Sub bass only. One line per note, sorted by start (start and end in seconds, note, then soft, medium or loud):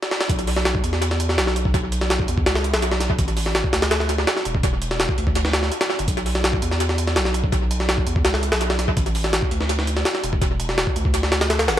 0.30 0.82 B1 loud
0.84 1.39 E2 medium
1.38 2.27 B1 loud
2.29 2.45 E2 medium
2.47 2.75 C#2 medium
2.74 3.20 B1 medium
3.19 3.63 A1 medium
3.73 4.26 D2 medium
4.45 5.07 E1 medium
5.18 5.70 D2 medium
5.99 6.07 G1 loud
6.08 6.61 B1 loud
6.62 7.18 E2 medium
7.17 8.05 B1 loud
8.07 8.23 E2 medium
8.25 8.54 C#2 medium
8.53 8.99 B1 loud
8.97 9.41 A1 loud
9.51 10.04 D2 medium
10.23 10.85 E1 medium
10.96 11.70 D2 medium
11.68 11.79 G1 medium